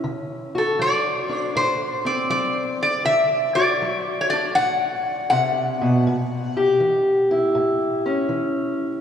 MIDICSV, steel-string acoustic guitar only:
0, 0, Header, 1, 2, 480
1, 0, Start_track
1, 0, Tempo, 751880
1, 21, Time_signature, 4, 2, 24, 8
1, 5751, End_track
2, 0, Start_track
2, 0, Title_t, "Steel-string acoustic guitar"
2, 0, Program_c, 0, 25
2, 24, Note_on_c, 0, 50, 72
2, 351, Note_on_c, 0, 66, 64
2, 471, Note_off_c, 0, 50, 0
2, 504, Note_on_c, 0, 54, 55
2, 825, Note_on_c, 0, 62, 54
2, 951, Note_off_c, 0, 54, 0
2, 990, Note_on_c, 0, 45, 68
2, 1308, Note_on_c, 0, 60, 53
2, 1434, Note_off_c, 0, 45, 0
2, 1467, Note_on_c, 0, 54, 64
2, 1913, Note_off_c, 0, 54, 0
2, 1926, Note_off_c, 0, 62, 0
2, 1927, Note_off_c, 0, 60, 0
2, 1946, Note_on_c, 0, 50, 73
2, 2267, Note_off_c, 0, 66, 0
2, 2275, Note_on_c, 0, 66, 55
2, 2393, Note_off_c, 0, 50, 0
2, 2437, Note_on_c, 0, 54, 59
2, 2762, Note_on_c, 0, 62, 56
2, 2878, Note_off_c, 0, 54, 0
2, 2916, Note_on_c, 0, 45, 62
2, 3358, Note_off_c, 0, 45, 0
2, 3390, Note_on_c, 0, 48, 59
2, 3706, Note_off_c, 0, 48, 0
2, 3712, Note_on_c, 0, 47, 63
2, 3854, Note_off_c, 0, 62, 0
2, 3868, Note_off_c, 0, 47, 0
2, 3870, Note_off_c, 0, 66, 0
2, 3874, Note_on_c, 0, 45, 81
2, 4192, Note_on_c, 0, 67, 64
2, 4316, Note_off_c, 0, 45, 0
2, 4342, Note_on_c, 0, 52, 59
2, 4666, Note_on_c, 0, 64, 54
2, 4790, Note_off_c, 0, 52, 0
2, 4818, Note_on_c, 0, 45, 67
2, 5143, Note_on_c, 0, 61, 55
2, 5268, Note_off_c, 0, 45, 0
2, 5290, Note_on_c, 0, 52, 57
2, 5744, Note_off_c, 0, 52, 0
2, 5751, Note_off_c, 0, 61, 0
2, 5751, Note_off_c, 0, 64, 0
2, 5751, Note_off_c, 0, 67, 0
2, 5751, End_track
0, 0, End_of_file